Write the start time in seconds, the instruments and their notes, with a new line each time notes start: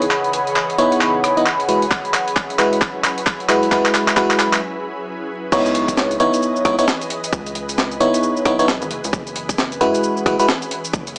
Already playing: ambient pad C#3 E3 G#4 B4 D#5, analog synth pad G#4 C#5 F#5 B5
0.02 closed hi-hat
0.11 clap
0.24 closed hi-hat
0.33 closed hi-hat
0.47 closed hi-hat
0.56 clap
0.70 closed hi-hat
0.78 fm electric piano B3 D#4 E4 C#5, closed hi-hat
0.92 closed hi-hat
1.01 clap
1.24 cross-stick, closed hi-hat
1.37 fm electric piano B3 D#4 E4 D#5, closed hi-hat
1.46 clap
1.60 closed hi-hat
1.68 ambient pad F#3 C#4 E4 B4, fm electric piano G#3 E4 F#4 B4, closed hi-hat
1.82 closed hi-hat
1.91 kick, clap
2.05 closed hi-hat
2.14 clap, closed hi-hat
2.28 closed hi-hat
2.36 kick, clap
2.50 closed hi-hat
2.59 fm electric piano G#3 E4 F#4 B4, clap, closed hi-hat
2.73 closed hi-hat
2.81 kick, clap
3.04 clap, closed hi-hat
3.18 closed hi-hat
3.26 kick, clap
3.40 closed hi-hat
3.49 fm electric piano G#3 E4 F#4 B4, clap, closed hi-hat
3.63 closed hi-hat
3.71 fm electric piano G#3 E4 F#4 B4, kick, clap
3.86 clap, closed hi-hat
3.95 clap, closed hi-hat
4.08 clap, closed hi-hat
4.17 fm electric piano G#3 E4 F#4 B4, kick, clap
4.31 clap, closed hi-hat
4.39 clap, closed hi-hat
4.53 clap, closed hi-hat
5.30 ambient pad C#3 D#4
5.52 analog synth bass C#2, ambient pad E3 G#4 B4 D#5, fm electric piano B3 D#4 E4 C#5, kick, crash, shaker
5.66 closed hi-hat, shaker
5.75 closed hi-hat
5.88 kick, closed hi-hat, shaker
5.97 snare, shaker
6.11 closed hi-hat, shaker
6.20 analog synth bass G#1, fm electric piano B3 D#4 E4 C#5, closed hi-hat
6.34 closed hi-hat, shaker
6.42 shaker
6.56 shaker
6.65 analog synth bass C#2, fm electric piano B3 D#4 E4 C#5, kick, cross-stick, closed hi-hat
6.79 fm electric piano B3 D#4 E4 C#5, closed hi-hat, shaker
6.88 snare, shaker
7.01 closed hi-hat, shaker
7.10 closed hi-hat
7.24 closed hi-hat, shaker
7.33 analog synth bass C#2, kick, shaker
7.46 closed hi-hat, shaker
7.55 closed hi-hat
7.69 closed hi-hat, shaker
7.78 snare, shaker
7.92 closed hi-hat, shaker
8.00 analog synth bass G#1, fm electric piano B3 D#4 E4 C#5, closed hi-hat
8.14 closed hi-hat, shaker
8.23 shaker
8.37 shaker
8.45 analog synth bass B1, fm electric piano B3 D#4 E4 C#5, kick, cross-stick, closed hi-hat
8.59 fm electric piano B3 D#4 E4 C#5, closed hi-hat, shaker
8.68 snare, shaker
8.82 analog synth bass G#1, closed hi-hat, shaker
8.91 analog synth bass F#1, ambient pad C#4, closed hi-hat
9.04 analog synth bass C#2, closed hi-hat, shaker
9.13 analog synth bass F#1, kick, shaker
9.27 closed hi-hat, shaker
9.36 closed hi-hat
9.49 kick, closed hi-hat, shaker
9.58 snare, shaker
9.72 closed hi-hat, shaker
9.81 analog synth bass F#2, fm electric piano G#3 E4 F#4 B4, closed hi-hat
9.95 closed hi-hat, shaker
10.03 shaker
10.17 shaker
10.26 analog synth bass F#1, fm electric piano G#3 E4 F#4 B4, kick, cross-stick, closed hi-hat
10.39 fm electric piano G#3 E4 F#4 B4, closed hi-hat, shaker
10.48 snare, shaker
10.62 closed hi-hat, shaker
10.71 ambient pad F#4, closed hi-hat
10.85 closed hi-hat, shaker
10.94 analog synth bass F#1, kick, shaker
11.07 closed hi-hat, shaker